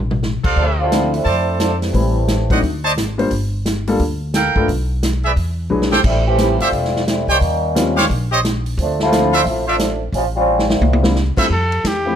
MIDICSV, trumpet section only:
0, 0, Header, 1, 2, 480
1, 0, Start_track
1, 0, Key_signature, -1, "minor"
1, 0, Tempo, 341686
1, 801, Time_signature, 4, 2, 24, 8
1, 17075, End_track
2, 0, Start_track
2, 0, Title_t, "Trumpet section"
2, 0, Program_c, 0, 61
2, 613, Note_on_c, 0, 69, 90
2, 614, Note_on_c, 0, 72, 77
2, 617, Note_on_c, 0, 74, 74
2, 617, Note_on_c, 0, 77, 88
2, 1242, Note_off_c, 0, 69, 0
2, 1243, Note_off_c, 0, 72, 0
2, 1244, Note_off_c, 0, 74, 0
2, 1245, Note_off_c, 0, 77, 0
2, 1747, Note_on_c, 0, 69, 88
2, 1748, Note_on_c, 0, 72, 81
2, 1748, Note_on_c, 0, 81, 87
2, 1751, Note_on_c, 0, 74, 79
2, 2483, Note_off_c, 0, 69, 0
2, 2483, Note_off_c, 0, 72, 0
2, 2483, Note_off_c, 0, 81, 0
2, 2485, Note_off_c, 0, 74, 0
2, 3526, Note_on_c, 0, 72, 80
2, 3526, Note_on_c, 0, 74, 69
2, 3526, Note_on_c, 0, 78, 90
2, 3532, Note_on_c, 0, 75, 73
2, 3641, Note_off_c, 0, 72, 0
2, 3641, Note_off_c, 0, 74, 0
2, 3641, Note_off_c, 0, 78, 0
2, 3645, Note_off_c, 0, 75, 0
2, 3989, Note_on_c, 0, 75, 79
2, 3993, Note_on_c, 0, 81, 92
2, 3994, Note_on_c, 0, 72, 89
2, 3996, Note_on_c, 0, 74, 71
2, 4111, Note_off_c, 0, 75, 0
2, 4113, Note_off_c, 0, 81, 0
2, 4114, Note_off_c, 0, 72, 0
2, 4115, Note_off_c, 0, 74, 0
2, 6107, Note_on_c, 0, 77, 71
2, 6110, Note_on_c, 0, 70, 74
2, 6112, Note_on_c, 0, 69, 78
2, 6112, Note_on_c, 0, 79, 84
2, 6582, Note_off_c, 0, 77, 0
2, 6584, Note_off_c, 0, 70, 0
2, 6585, Note_off_c, 0, 69, 0
2, 6585, Note_off_c, 0, 79, 0
2, 7356, Note_on_c, 0, 68, 75
2, 7358, Note_on_c, 0, 76, 87
2, 7359, Note_on_c, 0, 74, 68
2, 7364, Note_on_c, 0, 71, 71
2, 7477, Note_off_c, 0, 68, 0
2, 7478, Note_off_c, 0, 74, 0
2, 7478, Note_off_c, 0, 76, 0
2, 7482, Note_off_c, 0, 71, 0
2, 8310, Note_on_c, 0, 69, 91
2, 8315, Note_on_c, 0, 79, 99
2, 8316, Note_on_c, 0, 67, 98
2, 8317, Note_on_c, 0, 72, 86
2, 8433, Note_off_c, 0, 69, 0
2, 8436, Note_off_c, 0, 79, 0
2, 8437, Note_off_c, 0, 67, 0
2, 8437, Note_off_c, 0, 72, 0
2, 9284, Note_on_c, 0, 72, 76
2, 9288, Note_on_c, 0, 69, 79
2, 9288, Note_on_c, 0, 76, 94
2, 9290, Note_on_c, 0, 67, 81
2, 9401, Note_off_c, 0, 72, 0
2, 9403, Note_off_c, 0, 69, 0
2, 9403, Note_off_c, 0, 76, 0
2, 9405, Note_off_c, 0, 67, 0
2, 10241, Note_on_c, 0, 72, 83
2, 10243, Note_on_c, 0, 67, 93
2, 10244, Note_on_c, 0, 79, 100
2, 10246, Note_on_c, 0, 73, 77
2, 10359, Note_off_c, 0, 72, 0
2, 10360, Note_off_c, 0, 67, 0
2, 10361, Note_off_c, 0, 79, 0
2, 10362, Note_off_c, 0, 73, 0
2, 11192, Note_on_c, 0, 73, 85
2, 11193, Note_on_c, 0, 67, 96
2, 11195, Note_on_c, 0, 77, 94
2, 11197, Note_on_c, 0, 72, 81
2, 11312, Note_off_c, 0, 73, 0
2, 11313, Note_off_c, 0, 67, 0
2, 11314, Note_off_c, 0, 77, 0
2, 11316, Note_off_c, 0, 72, 0
2, 11676, Note_on_c, 0, 72, 80
2, 11677, Note_on_c, 0, 67, 88
2, 11678, Note_on_c, 0, 73, 81
2, 11682, Note_on_c, 0, 75, 92
2, 11794, Note_off_c, 0, 72, 0
2, 11795, Note_off_c, 0, 67, 0
2, 11796, Note_off_c, 0, 73, 0
2, 11798, Note_off_c, 0, 75, 0
2, 13100, Note_on_c, 0, 65, 95
2, 13108, Note_on_c, 0, 72, 84
2, 13108, Note_on_c, 0, 76, 108
2, 13113, Note_on_c, 0, 74, 83
2, 13223, Note_off_c, 0, 65, 0
2, 13228, Note_off_c, 0, 72, 0
2, 13228, Note_off_c, 0, 76, 0
2, 13231, Note_off_c, 0, 74, 0
2, 13588, Note_on_c, 0, 72, 66
2, 13589, Note_on_c, 0, 74, 75
2, 13592, Note_on_c, 0, 76, 87
2, 13597, Note_on_c, 0, 65, 81
2, 13708, Note_off_c, 0, 72, 0
2, 13708, Note_off_c, 0, 74, 0
2, 13710, Note_off_c, 0, 76, 0
2, 13713, Note_off_c, 0, 65, 0
2, 15982, Note_on_c, 0, 65, 93
2, 15982, Note_on_c, 0, 72, 89
2, 15982, Note_on_c, 0, 76, 112
2, 15983, Note_on_c, 0, 69, 90
2, 16101, Note_off_c, 0, 65, 0
2, 16101, Note_off_c, 0, 72, 0
2, 16101, Note_off_c, 0, 76, 0
2, 16102, Note_off_c, 0, 69, 0
2, 17075, End_track
0, 0, End_of_file